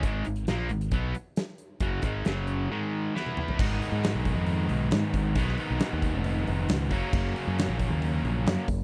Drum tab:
CC |----------------|----------------|x---------------|----------------|
HH |x-xxx-xxx-x-x-x-|x-x-x-x---------|--o-o-o-o-o-o-o-|o-o-o-o-o-o-o-o-|
SD |----o-------o---|----o-------o---|-o--o-------o---|-o--o-------o---|
T1 |----------------|-------------o--|----------------|----------------|
T2 |----------------|--------------o-|----------------|----------------|
FT |----------------|---------------o|----------------|----------------|
BD |o-------o-------|o-o-------------|o-----o-------o-|o-----o-------o-|

CC |x---------------|
HH |--o-o-o-o-o-o-o-|
SD |-o--o-------o---|
T1 |----------------|
T2 |----------------|
FT |----------------|
BD |o-----o-------o-|